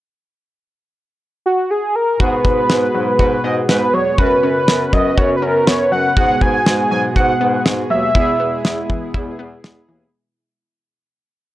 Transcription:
1.46 analog synth lead F#4
1.71 analog synth lead G#4
1.95 analog synth lead A#4
2.20 bass clarinet G#2, analog synth pad B2 G#3 F#4, analog polysynth B3 F#4 G#4, synth pluck F#4, analog synth lead B4, kick
2.45 bass clarinet G#2, synth pluck B3, kick
2.70 bass clarinet G#2, synth pluck G#3, snare
2.94 bass clarinet G#2, synth pluck F#3
3.19 bass clarinet G#2, synth pluck F#4, analog synth lead B4, kick
3.44 bass clarinet G#2, synth pluck B3, analog synth lead D#5
3.69 bass clarinet G#2, synth pluck G#3, analog synth lead B4, snare
3.94 bass clarinet E2, synth pluck F#3, analog synth lead C#5
4.18 bass clarinet F#2, analog synth pad C#3 B3 F#4, analog polysynth C#4 F#4 B4, synth pluck F#4, analog synth lead B4, kick
4.43 bass clarinet F#2, synth pluck C#4
4.68 bass clarinet F#2, synth pluck B3, snare
4.93 bass clarinet F#2, synth pluck F#3, analog synth lead D#5, kick
5.17 bass clarinet F#2, synth pluck F#4, analog synth lead C#5, kick
5.36 analog synth lead B4
5.42 bass clarinet F#2, synth pluck C#4, analog synth lead A#4
5.67 bass clarinet F#2, synth pluck B3, analog synth lead C#5, snare
5.92 bass clarinet F#2, synth pluck F#3, analog synth lead F#5
6.17 bass clarinet G#2, analog synth pad B2 G#3, analog polysynth B3 F#4 G#4, synth pluck F#4, analog synth lead F#5, kick
6.41 bass clarinet G#2, synth pluck B3, analog synth lead G#5, kick
6.66 bass clarinet G#2, synth pluck G#3, snare
6.91 bass clarinet G#2, synth pluck F#3, analog synth lead G#5
7.16 bass clarinet G#2, synth pluck F#4, analog synth lead F#5, kick
7.41 bass clarinet G#2, synth pluck B3
7.65 bass clarinet G#2, synth pluck G#3, snare
7.90 bass clarinet D#2, synth pluck F#3, analog synth lead E5
8.15 bass clarinet E2, analog synth pad G#3 E4, analog polysynth B3 E4 G#4, synth pluck E4, kick
8.40 bass clarinet E2, synth pluck B3
8.65 bass clarinet E2, synth pluck G#3, snare
8.89 synth pluck E3, kick
9.14 bass clarinet E2, synth pluck E4, kick
9.39 bass clarinet E2, synth pluck B3
9.64 bass clarinet E2, synth pluck G#3, snare
9.89 bass clarinet D#2, synth pluck E3

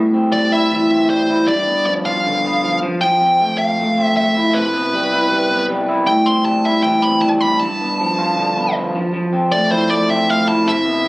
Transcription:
Already playing: clean electric guitar A2 G3
0.14 clean electric guitar C4
0.32 clean electric guitar G3, lead electric guitar D5
0.52 clean electric guitar E4, lead electric guitar E5
0.72 clean electric guitar E3
0.91 clean electric guitar C4
1.10 clean electric guitar G3, lead electric guitar C5
1.30 clean electric guitar E4
1.48 clean electric guitar G2, lead electric guitar D5
1.67 clean electric guitar B3
1.86 clean electric guitar F3, lead electric guitar D5
2.05 clean electric guitar F4, lead electric guitar F5
2.26 clean electric guitar D3
2.44 clean electric guitar B3
2.64 clean electric guitar F3
2.83 clean electric guitar F3
3.01 clean electric guitar F3, lead electric guitar G5
3.21 clean electric guitar C4
3.40 clean electric guitar A3
3.58 lead electric guitar F5
3.79 clean electric guitar A3
3.98 clean electric guitar C4, lead electric guitar E5
4.17 clean electric guitar A3, lead electric guitar E5
4.37 clean electric guitar E4
4.54 clean electric guitar C3, lead electric guitar B4
4.74 clean electric guitar B3
4.93 clean electric guitar G3
5.12 clean electric guitar E4
5.32 clean electric guitar G3
5.51 clean electric guitar B3
5.69 clean electric guitar G3
5.89 clean electric guitar E4
6.07 clean electric guitar A2, lead electric guitar G5
6.26 clean electric guitar C4, lead electric guitar C6
6.45 clean electric guitar G3, lead electric guitar A5
6.65 clean electric guitar E4, lead electric guitar E5
6.83 clean electric guitar E3, lead electric guitar G5
7.02 clean electric guitar C4, lead electric guitar B5
7.22 clean electric guitar G3, lead electric guitar A5
7.41 clean electric guitar D4, lead electric guitar B5
7.52 clean electric guitar E4
7.60 clean electric guitar G2, lead electric guitar A5
7.81 clean electric guitar B3
8.00 clean electric guitar F3
8.19 clean electric guitar F4
8.37 clean electric guitar D3
8.56 clean electric guitar B3
8.75 clean electric guitar F3
8.95 clean electric guitar F3
9.14 clean electric guitar F3
9.33 clean electric guitar C4
9.52 clean electric guitar A3, lead electric guitar D5
9.71 clean electric guitar E4, lead electric guitar C5
9.90 clean electric guitar A3, lead electric guitar D5
10.09 clean electric guitar C4, lead electric guitar E5
10.29 clean electric guitar A3, lead electric guitar F5
10.48 clean electric guitar E4, lead electric guitar A5
10.67 clean electric guitar C3, lead electric guitar E5
10.86 clean electric guitar B3

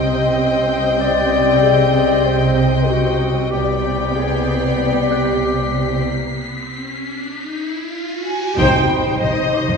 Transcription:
Already playing: double bass section C2, cello section C3, viola section C4, clarinet D#5, violin section D#5 G5 C6 G6
1.00 clarinet D5
1.63 music box G#4
2.26 clarinet C5
2.89 clarinet F#4
3.51 double bass section C2, cello section C3, viola section B3, clarinet G4, violin section D5 G5 B6, riser
4.15 clarinet G#4, violin section C7
4.79 clarinet G4
5.11 music box G4 F#6
8.26 violin section G#5
8.57 double bass section C2, cello section C3, viola section D#4 C5, violin section G5, taiko, impact
8.89 music box B5
9.21 violin section D#5, taiko
9.54 music box C5 D6
9.68 taiko

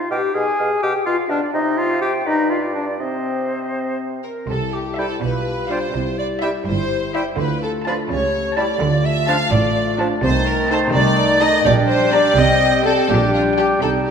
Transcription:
Already playing: clarinet F4, flute F5
0.10 bassoon B2, french horn section G4, clarinet G4, oboe F5, flute G5
0.33 bassoon B2, french horn section G#4, clarinet G#4, oboe F5, flute G#5
0.59 bassoon B2, oboe F5
0.82 bassoon B2, french horn section G4, clarinet G4, oboe F5, flute G5
1.05 bassoon B2, french horn section F4, clarinet F4, flute F5, oboe F5
1.29 bassoon B2, french horn section D4, clarinet D4, flute D5, oboe F5
1.54 bassoon C3, clarinet D#4, french horn section D#4, flute D#5, oboe D#5
1.77 french horn section F4, clarinet F4, flute F5
1.90 oboe C5
2.01 clarinet G4, french horn section G4, flute G5
2.25 bassoon G2, clarinet D#4, french horn section D#4, oboe B4, flute D#5
2.50 clarinet F4, french horn section F4, flute F5
2.63 oboe D5
2.74 clarinet D4, french horn section D4, flute D5
2.99 bassoon C3, french horn section C4, clarinet C4, flute C5, oboe D#5
4.24 violin section A#4, flute A#4
4.48 double bass section C2, cello section C3, french horn section G3 E4, flute A4, violin section A4
4.73 flute G4, violin section G4
4.97 bassoon G3, clarinet E4, viola section E4 C5, flute A4, violin section A4 E5, oboe G5
5.21 double bass section B1, cello section B2, french horn section G3 F4, flute B4, violin section B4
5.69 bassoon G3, viola section D4 G4, clarinet F4, violin section C5 F5, flute C5, oboe G5
5.94 double bass section C2, cello section C3, french horn section G3 E4
6.18 flute D5, violin section D5
6.42 bassoon G3, clarinet E4, viola section E4 G4, violin section E5, flute E5, oboe G5
6.66 double bass section G1, cello section G2, french horn section G3 E4, violin section C5, flute C5
7.14 bassoon G3, clarinet E4, viola section E4 G4, flute C5, violin section C5 E5, oboe G5
7.38 double bass section D2, cello section D3, french horn section A3 F4, flute B4, violin section B4
7.62 flute A4, violin section A4
7.85 bassoon F3, viola section D4 F4, clarinet F4, flute B4, violin section B4 A5, oboe A5
8.09 double bass section C#2, cello section C#3, french horn section A3 G4, flute C#5, violin section C#5
8.56 bassoon G3, clarinet E4, viola section E4 G4, flute D5, violin section D5 A5, oboe A5
8.80 double bass section D2, cello section D3, french horn section A3 F4
9.05 flute E5, violin section E5
9.28 bassoon F3, clarinet D4, viola section D4 F4, violin section F5 A5, flute F5, oboe A5
9.51 double bass section A1, cello section A2, french horn section A3 F4, violin section D5, flute D5
9.99 bassoon F3, clarinet D4, viola section D4 F4, oboe A5, violin section A5
10.23 double bass section C2, cello section C3, bassoon D#3, french horn section A3 D#4, clarinet D#4, flute C5, violin section C5, oboe A5
10.47 violin section A#4, flute A#4
10.70 viola section D#4 A4, flute C5, violin section C5 A5
10.94 double bass section C2, cello section C3, flute D5, violin section D5
11.41 viola section D#4 A4, violin section D#5 A5, flute D#5
11.64 double bass section A#1, cello section A#2, french horn section G3 D4, bassoon G3, clarinet D4, violin section D5, flute D5, oboe G5
11.88 violin section C5, flute C5
12.13 viola section D4 G4, violin section D5 A#5, flute D5
12.36 double bass section C2, cello section C3, french horn section G3 C4, clarinet C4, flute D#5, violin section D#5
12.85 viola section C4 G4, flute A4, violin section A4 G5
13.09 double bass section A#1, cello section A#2, bassoon G3, french horn section G3 D4, clarinet D4, flute G4, violin section G4, oboe G5
13.34 violin section F4, flute F4
13.57 viola section D4 G4, violin section G4 G5, flute G4
13.82 double bass section C2, cello section C3, bassoon G3, french horn section G3 D#4, clarinet D#4, violin section A4, flute A4, oboe G5
14.07 violin section G4, flute G4

